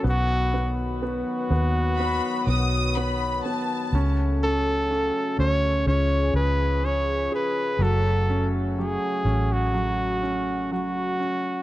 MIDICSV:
0, 0, Header, 1, 6, 480
1, 0, Start_track
1, 0, Key_signature, 3, "minor"
1, 0, Tempo, 967742
1, 27, Time_signature, 4, 2, 24, 8
1, 5766, End_track
2, 0, Start_track
2, 0, Title_t, "Violin section"
2, 0, Program_c, 0, 48
2, 984, Note_on_c, 0, 83, 94
2, 1209, Note_off_c, 0, 83, 0
2, 1231, Note_on_c, 0, 87, 93
2, 1467, Note_on_c, 0, 83, 87
2, 1469, Note_off_c, 0, 87, 0
2, 1707, Note_off_c, 0, 83, 0
2, 1712, Note_on_c, 0, 81, 78
2, 2050, Note_off_c, 0, 81, 0
2, 5766, End_track
3, 0, Start_track
3, 0, Title_t, "Flugelhorn"
3, 0, Program_c, 1, 56
3, 48, Note_on_c, 1, 66, 104
3, 363, Note_off_c, 1, 66, 0
3, 525, Note_on_c, 1, 66, 89
3, 1456, Note_off_c, 1, 66, 0
3, 2198, Note_on_c, 1, 69, 109
3, 2653, Note_off_c, 1, 69, 0
3, 2678, Note_on_c, 1, 73, 114
3, 2896, Note_off_c, 1, 73, 0
3, 2916, Note_on_c, 1, 73, 100
3, 3135, Note_off_c, 1, 73, 0
3, 3154, Note_on_c, 1, 71, 94
3, 3399, Note_on_c, 1, 73, 100
3, 3406, Note_off_c, 1, 71, 0
3, 3633, Note_off_c, 1, 73, 0
3, 3647, Note_on_c, 1, 71, 91
3, 3881, Note_on_c, 1, 69, 112
3, 3889, Note_off_c, 1, 71, 0
3, 4220, Note_off_c, 1, 69, 0
3, 4360, Note_on_c, 1, 68, 94
3, 4724, Note_on_c, 1, 66, 79
3, 4732, Note_off_c, 1, 68, 0
3, 5316, Note_off_c, 1, 66, 0
3, 5320, Note_on_c, 1, 66, 88
3, 5766, Note_off_c, 1, 66, 0
3, 5766, End_track
4, 0, Start_track
4, 0, Title_t, "Grand piano"
4, 0, Program_c, 2, 0
4, 0, Control_c, 2, 64, 127
4, 19, Note_on_c, 2, 59, 59
4, 34, Control_c, 2, 64, 0
4, 117, Control_c, 2, 64, 127
4, 259, Note_off_c, 2, 59, 0
4, 267, Note_on_c, 2, 59, 56
4, 502, Note_off_c, 2, 59, 0
4, 509, Note_on_c, 2, 59, 56
4, 742, Note_off_c, 2, 59, 0
4, 749, Note_on_c, 2, 59, 55
4, 983, Note_off_c, 2, 59, 0
4, 990, Note_on_c, 2, 59, 54
4, 1224, Note_off_c, 2, 59, 0
4, 1231, Note_on_c, 2, 59, 48
4, 1466, Note_off_c, 2, 59, 0
4, 1473, Note_on_c, 2, 59, 53
4, 1706, Note_off_c, 2, 59, 0
4, 1714, Note_on_c, 2, 59, 52
4, 1943, Note_off_c, 2, 59, 0
4, 1954, Control_c, 2, 64, 0
4, 1958, Note_on_c, 2, 61, 73
4, 2051, Control_c, 2, 64, 127
4, 2191, Note_off_c, 2, 61, 0
4, 2199, Note_on_c, 2, 61, 51
4, 2426, Note_off_c, 2, 61, 0
4, 2433, Note_on_c, 2, 61, 51
4, 2666, Note_off_c, 2, 61, 0
4, 2673, Note_on_c, 2, 61, 59
4, 2903, Note_off_c, 2, 61, 0
4, 2913, Control_c, 2, 64, 0
4, 2913, Note_on_c, 2, 61, 70
4, 2999, Control_c, 2, 64, 127
4, 3160, Note_on_c, 2, 68, 49
4, 3385, Note_off_c, 2, 61, 0
4, 3393, Note_on_c, 2, 61, 47
4, 3623, Note_off_c, 2, 68, 0
4, 3631, Note_on_c, 2, 68, 54
4, 3856, Note_off_c, 2, 61, 0
4, 3862, Note_off_c, 2, 68, 0
4, 3868, Note_on_c, 2, 54, 68
4, 3873, Control_c, 2, 64, 0
4, 3968, Control_c, 2, 64, 127
4, 4115, Note_on_c, 2, 61, 52
4, 4349, Note_off_c, 2, 54, 0
4, 4356, Note_on_c, 2, 54, 54
4, 4583, Note_off_c, 2, 61, 0
4, 4590, Note_on_c, 2, 61, 53
4, 4822, Note_off_c, 2, 54, 0
4, 4830, Note_on_c, 2, 54, 55
4, 5065, Note_off_c, 2, 61, 0
4, 5072, Note_on_c, 2, 61, 48
4, 5306, Note_off_c, 2, 54, 0
4, 5313, Note_on_c, 2, 54, 50
4, 5548, Note_off_c, 2, 61, 0
4, 5555, Note_on_c, 2, 61, 44
4, 5766, Note_off_c, 2, 54, 0
4, 5766, Note_off_c, 2, 61, 0
4, 5766, End_track
5, 0, Start_track
5, 0, Title_t, "French horn section"
5, 0, Program_c, 3, 60
5, 0, Note_on_c, 3, 54, 72
5, 0, Note_on_c, 3, 66, 69
5, 20, Note_on_c, 3, 51, 70
5, 21, Note_on_c, 3, 59, 73
5, 21, Note_on_c, 3, 71, 82
5, 975, Note_off_c, 3, 71, 0
5, 983, Note_on_c, 3, 73, 86
5, 1924, Note_off_c, 3, 51, 0
5, 1925, Note_off_c, 3, 59, 0
5, 1926, Note_off_c, 3, 54, 0
5, 1935, Note_off_c, 3, 73, 0
5, 1951, Note_on_c, 3, 49, 76
5, 1952, Note_on_c, 3, 54, 70
5, 1955, Note_on_c, 3, 57, 68
5, 1957, Note_on_c, 3, 69, 85
5, 2887, Note_off_c, 3, 66, 0
5, 2899, Note_off_c, 3, 49, 0
5, 2900, Note_off_c, 3, 54, 0
5, 2901, Note_off_c, 3, 57, 0
5, 2903, Note_off_c, 3, 69, 0
5, 2906, Note_on_c, 3, 49, 70
5, 2907, Note_on_c, 3, 53, 61
5, 2908, Note_on_c, 3, 65, 70
5, 2908, Note_on_c, 3, 68, 81
5, 3857, Note_off_c, 3, 53, 0
5, 3858, Note_off_c, 3, 65, 0
5, 3858, Note_off_c, 3, 68, 0
5, 3874, Note_on_c, 3, 57, 71
5, 3875, Note_on_c, 3, 66, 86
5, 3876, Note_on_c, 3, 54, 67
5, 5766, Note_off_c, 3, 49, 0
5, 5766, Note_off_c, 3, 54, 0
5, 5766, Note_off_c, 3, 57, 0
5, 5766, Note_off_c, 3, 66, 0
5, 5766, End_track
6, 0, Start_track
6, 0, Title_t, "Fingered electric bass"
6, 0, Program_c, 4, 33
6, 22, Note_on_c, 4, 35, 103
6, 604, Note_off_c, 4, 35, 0
6, 746, Note_on_c, 4, 39, 85
6, 1087, Note_off_c, 4, 39, 0
6, 1224, Note_on_c, 4, 35, 82
6, 1686, Note_off_c, 4, 35, 0
6, 1947, Note_on_c, 4, 37, 91
6, 2527, Note_off_c, 4, 37, 0
6, 2671, Note_on_c, 4, 38, 80
6, 2892, Note_off_c, 4, 38, 0
6, 2911, Note_on_c, 4, 37, 110
6, 3132, Note_off_c, 4, 37, 0
6, 3143, Note_on_c, 4, 37, 89
6, 3605, Note_off_c, 4, 37, 0
6, 3863, Note_on_c, 4, 30, 98
6, 4445, Note_off_c, 4, 30, 0
6, 4587, Note_on_c, 4, 33, 85
6, 5527, Note_off_c, 4, 33, 0
6, 5766, End_track
0, 0, End_of_file